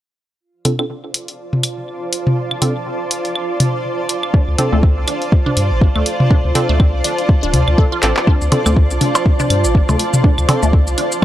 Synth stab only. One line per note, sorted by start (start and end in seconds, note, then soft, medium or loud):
0.65 0.77 C4 medium
0.65 0.77 D4 medium
0.65 0.77 F4 medium
0.65 0.77 A4 medium
0.79 0.85 C4 medium
0.79 0.85 D4 medium
0.79 0.85 F4 medium
0.79 0.85 A4 medium
2.62 2.74 C4 medium
2.62 2.74 D4 medium
2.62 2.74 F4 medium
2.62 2.74 A4 medium
4.58 4.70 C4 medium
4.58 4.70 D4 medium
4.58 4.70 F4 medium
4.58 4.70 A4 medium
4.73 4.78 C4 medium
4.73 4.78 D4 medium
4.73 4.78 F4 medium
4.73 4.78 A4 medium
6.55 6.67 C4 medium
6.55 6.67 D4 medium
6.55 6.67 F4 medium
6.55 6.67 A4 medium
8.03 8.11 C4 medium
8.03 8.11 D4 medium
8.03 8.11 F4 medium
8.03 8.11 A4 medium
8.52 8.64 C4 medium
8.52 8.64 D4 medium
8.52 8.64 F4 medium
8.52 8.64 A4 medium
8.66 8.72 C4 medium
8.66 8.72 D4 medium
8.66 8.72 F4 medium
8.66 8.72 A4 medium
10.49 10.61 C4 medium
10.49 10.61 D4 medium
10.49 10.61 F4 medium
10.49 10.61 A4 medium